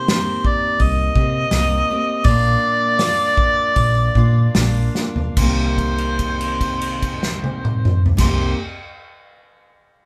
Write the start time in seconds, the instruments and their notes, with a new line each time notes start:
Already playing: steel-string acoustic guitar C3 A#3 C4 G4
0.08 steel-string acoustic guitar D#3 A#3 C4, harmonica C5, snare, open hi-hat
0.13 steel-string acoustic guitar G4
0.45 harmonica D5, kick
0.79 fingered electric bass C2, harmonica D#5, kick, open hi-hat
1.16 fingered electric bass C3, steel-string acoustic guitar G4, kick
1.20 steel-string acoustic guitar A#3 C4
1.51 fingered electric bass C2, steel-string acoustic guitar D#3 A#3, snare, open hi-hat
1.55 steel-string acoustic guitar C4 G4
1.90 steel-string acoustic guitar A#3 C4 G4
2.24 fingered electric bass A#1, steel-string acoustic guitar A#2 F3 A#3 D4, harmonica D5, kick, open hi-hat
2.29 steel-string acoustic guitar F4
2.99 steel-string acoustic guitar F3 A#3 D4 F4, snare, open hi-hat
3.38 kick
3.76 fingered electric bass A#1, kick, open hi-hat
4.15 fingered electric bass A#2, steel-string acoustic guitar A#3 D4 F4, kick
4.55 fingered electric bass A#1, steel-string acoustic guitar F3 A#3 D4 F4, snare, open hi-hat
4.95 steel-string acoustic guitar A#3 D4 F4, snare
5.16 floor tom
5.37 fingered electric bass C2, steel-string acoustic guitar C3 D#3, harmonica C5, kick, crash
5.41 steel-string acoustic guitar A#3 C4 G4
5.78 kick, crash
5.98 crash
6.19 kick, crash
6.41 crash
6.61 kick, crash
6.81 crash
7.02 kick, crash
7.23 snare
7.44 high tom
7.65 mid tom
7.85 mid tom
8.06 floor tom
8.17 fingered electric bass C2, steel-string acoustic guitar C3 D#3, harmonica C5, kick, snare, crash
8.22 steel-string acoustic guitar A#3 C4 G4